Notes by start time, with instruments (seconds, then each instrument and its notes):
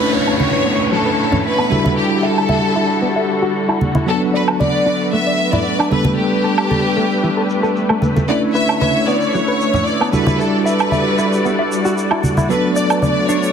Already playing: string section D3 A3 E4 B4 C#5, tine electric piano A3 C#4 D4 E4 B4, violin section B4, downlifter
0.13 clean electric guitar B4, violin section C#5, shaker
0.26 high woodblock, shaker
0.39 clean electric guitar B4, violin section C#5, high conga
0.65 clean electric guitar B3, shaker
0.92 clean electric guitar F#3, violin section A4
1.05 clean electric guitar B4
1.32 clean electric guitar C#4, low conga
1.46 violin section B4
1.58 clean electric guitar B3, high woodblock
1.70 tine electric piano G3 D4 E4 F#4 A4, string section G3 F#4 A4, high conga
1.84 clean electric guitar E4, high conga
1.97 clean electric guitar E4, violin section G4
2.23 violin section A4, clean electric guitar E5
2.38 high woodblock, shaker
2.49 clean electric guitar E5, high conga
2.76 clean electric guitar E4
3.02 clean electric guitar B3
3.16 clean electric guitar E5
3.42 clean electric guitar F#4, shaker
3.55 shaker
3.69 clean electric guitar E4, high woodblock
3.81 high conga
3.95 clean electric guitar E4, high conga, shaker
4.06 tine electric piano F#3 B3 D4 A4, string section A3 B4, clean electric guitar D4, violin section A4
4.34 violin section B4, clean electric guitar D5, shaker
4.48 high woodblock, shaker
4.60 clean electric guitar D5, violin section D5, high conga, shaker
4.86 clean electric guitar D4, shaker
5.00 shaker
5.13 clean electric guitar A3, violin section E5, shaker
5.27 clean electric guitar D5
5.53 clean electric guitar E4, violin section D5, low conga, shaker
5.66 shaker
5.79 clean electric guitar D4, high woodblock
5.90 tine electric piano G3 B3 D4 A4, string section D4 G4, violin section B4, high conga, shaker
6.05 clean electric guitar A3, high conga
6.18 clean electric guitar A3, violin section G4, shaker
6.44 clean electric guitar A4, shaker
6.58 high woodblock, shaker
6.70 clean electric guitar A4, high conga, shaker
6.97 clean electric guitar A3, shaker
7.11 shaker
7.23 clean electric guitar E3, shaker
7.37 clean electric guitar A4
7.50 shaker
7.63 clean electric guitar A4, shaker
7.76 shaker
7.89 clean electric guitar A3, high woodblock
8.02 clean electric guitar A3, high conga, shaker
8.16 clean electric guitar A3, high conga, shaker
8.28 string section D3 E4 C#5, tine electric piano A3 C#4 D4 E4 B4, clean electric guitar B3, violin section D5, shaker
8.54 clean electric guitar B4, violin section E5, shaker
8.69 high woodblock, shaker
8.80 clean electric guitar B4, violin section E5, high conga, shaker
9.07 clean electric guitar B3, violin section D5, shaker
9.22 shaker
9.33 clean electric guitar F#3, violin section C#5, shaker
9.48 clean electric guitar B4
9.61 shaker
9.74 clean electric guitar C#4, low conga, shaker
9.86 violin section D5, shaker
10.01 clean electric guitar B3, high woodblock
10.12 tine electric piano G3 D4 E4 F#4 A4, string section G3 F#4 A4 D5, violin section B4, high conga, shaker
10.27 clean electric guitar E4, high conga, shaker
10.39 clean electric guitar E4, violin section A4, shaker
10.65 violin section B4, clean electric guitar E5, shaker
10.79 high woodblock, shaker
10.91 clean electric guitar E5, high conga, shaker
11.18 clean electric guitar E4, shaker
11.33 shaker
11.45 clean electric guitar B3, shaker
11.59 clean electric guitar E5
11.72 shaker
11.85 clean electric guitar F#4, shaker
11.98 shaker
12.11 clean electric guitar E4, high woodblock
12.23 high conga, shaker
12.37 clean electric guitar E4, high conga, shaker
12.49 tine electric piano F#3 B3 D4 A4, string section A3 B4 D5, clean electric guitar D4, violin section B4, shaker
12.76 violin section D5, clean electric guitar D5, shaker
12.90 high woodblock, shaker
13.02 violin section D5, clean electric guitar D5, high conga, shaker
13.29 clean electric guitar D4, violin section C#5, shaker
13.43 shaker